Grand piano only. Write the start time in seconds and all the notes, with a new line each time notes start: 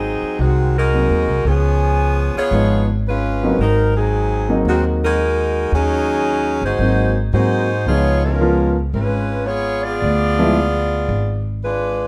0.94 F#3 A#3 C4 D#4
2.53 F3 G#3 B3 D#4
3.43 F#3 A#3 C4 D#4
4.49 F#3 A#3 C4 D#4
6.79 F#3 A#3 C4 D#4
7.34 F#3 A#3 C4 F#4
7.87 F3 G#3 B3 D#4
8.41 F3 G#3 B3 F4
10.39 F3 G#3 B3 E4